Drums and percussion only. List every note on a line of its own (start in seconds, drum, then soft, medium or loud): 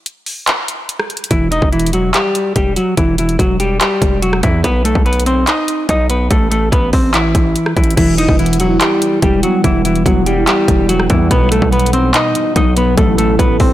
0.06 closed hi-hat medium
0.26 open hi-hat soft
0.47 clap loud
0.47 closed hi-hat medium
0.68 closed hi-hat medium
0.89 closed hi-hat medium
1.00 cross-stick medium
1.10 closed hi-hat soft
1.17 closed hi-hat medium
1.24 closed hi-hat medium
1.31 kick loud
1.31 closed hi-hat medium
1.52 closed hi-hat medium
1.62 kick medium
1.73 closed hi-hat soft
1.79 closed hi-hat medium
1.87 closed hi-hat medium
1.93 closed hi-hat medium
2.14 clap loud
2.14 closed hi-hat medium
2.35 closed hi-hat medium
2.56 kick medium
2.56 closed hi-hat medium
2.76 closed hi-hat medium
2.97 kick loud
2.97 closed hi-hat medium
3.18 closed hi-hat medium
3.29 closed hi-hat soft
3.39 kick medium
3.39 closed hi-hat medium
3.60 closed hi-hat medium
3.81 clap loud
3.81 closed hi-hat medium
4.02 kick medium
4.02 closed hi-hat medium
4.22 closed hi-hat medium
4.33 cross-stick medium
4.43 kick medium
4.43 closed hi-hat medium
4.64 kick loud
4.64 closed hi-hat medium
4.85 closed hi-hat medium
4.95 kick loud
5.06 closed hi-hat soft
5.13 closed hi-hat medium
5.20 closed hi-hat medium
5.26 closed hi-hat medium
5.47 clap loud
5.47 closed hi-hat medium
5.68 closed hi-hat medium
5.89 kick medium
5.89 closed hi-hat medium
6.10 closed hi-hat medium
6.31 kick loud
6.31 closed hi-hat medium
6.52 closed hi-hat medium
6.72 kick medium
6.72 closed hi-hat medium
6.93 kick loud
6.93 open hi-hat soft
7.14 clap loud
7.14 closed hi-hat medium
7.35 kick medium
7.35 closed hi-hat medium
7.56 closed hi-hat medium
7.66 cross-stick medium
7.77 kick medium
7.77 closed hi-hat soft
7.84 closed hi-hat medium
7.91 closed hi-hat medium
7.97 kick loud
7.97 closed hi-hat medium
7.97 crash loud
8.18 closed hi-hat medium
8.29 kick loud
8.39 closed hi-hat soft
8.46 closed hi-hat medium
8.53 closed hi-hat medium
8.60 closed hi-hat medium
8.81 clap loud
8.81 closed hi-hat medium
9.02 closed hi-hat medium
9.22 kick medium
9.22 closed hi-hat medium
9.43 closed hi-hat medium
9.64 kick loud
9.64 closed hi-hat medium
9.85 closed hi-hat medium
9.95 closed hi-hat soft
10.06 kick loud
10.06 closed hi-hat medium
10.26 closed hi-hat medium
10.47 clap loud
10.47 closed hi-hat medium
10.68 kick loud
10.68 closed hi-hat medium
10.89 closed hi-hat medium
11.00 cross-stick medium
11.10 kick medium
11.10 closed hi-hat medium
11.31 kick loud
11.31 closed hi-hat medium
11.52 closed hi-hat medium
11.62 kick loud
11.72 closed hi-hat soft
11.79 closed hi-hat medium
11.86 closed hi-hat medium
11.93 closed hi-hat medium
12.14 clap loud
12.14 closed hi-hat medium
12.35 closed hi-hat medium
12.56 kick medium
12.56 closed hi-hat medium
12.77 closed hi-hat medium
12.98 kick loud
12.98 closed hi-hat medium
13.18 closed hi-hat medium
13.39 kick loud
13.39 closed hi-hat medium
13.60 kick loud
13.60 open hi-hat soft